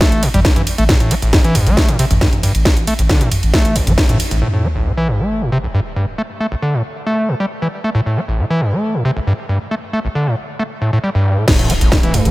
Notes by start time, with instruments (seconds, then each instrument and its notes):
0.01 acid bass A3, kick, snare, closed hi-hat
0.12 sub bass A1, closed hi-hat
0.23 acid bass A2, open hi-hat, ride
0.34 sub bass A1, acid bass G3, closed hi-hat, mid tom
0.45 kick, snare, closed hi-hat
0.56 sub bass A1, acid bass E3, closed hi-hat, mid tom
0.67 open hi-hat, ride
0.78 sub bass A1, acid bass A3, closed hi-hat
0.89 acid bass A2, kick, snare, closed hi-hat
1.00 sub bass A1, acid bass A2, closed hi-hat
1.11 acid bass A3, open hi-hat, ride
1.22 acid bass A1, sub bass A1, closed hi-hat
1.33 acid bass A#2, kick, snare, closed hi-hat
1.44 sub bass A1, acid bass E3, closed hi-hat
1.55 acid bass G2, mid tom, open hi-hat, ride
1.67 sub bass A1, acid bass A3, closed hi-hat
1.77 kick, snare, closed hi-hat
1.89 sub bass A1, acid bass A2, closed hi-hat
1.99 acid bass C3, open hi-hat, ride
2.11 sub bass A1, acid bass A1, closed hi-hat, mid tom
2.21 acid bass G2, kick, snare, closed hi-hat
2.33 sub bass A1, closed hi-hat, mid tom
2.43 acid bass G2, open hi-hat, ride
2.55 sub bass A1, closed hi-hat
2.65 acid bass A3, kick, snare, closed hi-hat
2.77 sub bass A1, closed hi-hat
2.87 acid bass A3, open hi-hat, ride
2.99 sub bass A1, acid bass A1, closed hi-hat
3.09 acid bass D3, kick, snare, closed hi-hat
3.21 sub bass A1, acid bass A2, closed hi-hat
3.31 mid tom, open hi-hat, ride
3.43 sub bass A1, closed hi-hat
3.54 acid bass A3, kick, snare, closed hi-hat
3.65 sub bass A1, closed hi-hat
3.76 acid bass A1, open hi-hat, ride
3.87 sub bass A1, acid bass A3, closed hi-hat, mid tom
3.98 kick, snare, closed hi-hat
4.09 sub bass A1, acid bass A2, closed hi-hat, mid tom
4.20 open hi-hat, ride
4.31 sub bass A1, acid bass A1, closed hi-hat
4.42 acid bass A2, sub drop
4.53 acid bass A2
4.64 acid bass A3
4.75 acid bass A1
4.86 acid bass A#2
4.97 acid bass E3
5.08 acid bass G2
5.19 acid bass A3
5.42 acid bass A2
5.52 acid bass C3
5.64 acid bass A1
5.74 acid bass G2
5.96 acid bass G2
6.18 acid bass A3
6.40 acid bass A3
6.52 acid bass A1
6.62 acid bass D3
6.74 acid bass A2
7.07 acid bass A3
7.29 acid bass A2
7.40 acid bass G3
7.62 acid bass E3
7.84 acid bass A3
7.95 acid bass A2
8.06 acid bass A2
8.17 acid bass A3
8.28 acid bass A1
8.39 acid bass A#2
8.50 acid bass E3
8.61 acid bass G2
8.72 acid bass A3
8.94 acid bass A2
9.05 acid bass C3
9.16 acid bass A1
9.27 acid bass G2
9.49 acid bass G2
9.71 acid bass A3
9.93 acid bass A3
10.05 acid bass A1
10.15 acid bass D3
10.27 acid bass A2
10.59 acid bass A3
10.82 acid bass A2
10.93 acid bass A2
11.04 acid bass G3
11.15 acid bass G2
11.37 acid bass A2
11.48 acid bass A2, synth drone A2 A3, kick, snare, closed hi-hat, crash, impact
11.59 sub bass A1, acid bass A2, closed hi-hat
11.70 acid bass A3, open hi-hat, ride
11.81 sub bass A1, acid bass A1, closed hi-hat
11.92 acid bass A#2, kick, snare, closed hi-hat
12.03 sub bass A1, acid bass E3, closed hi-hat
12.14 acid bass G2, mid tom, open hi-hat, ride
12.25 sub bass A1, acid bass A3, closed hi-hat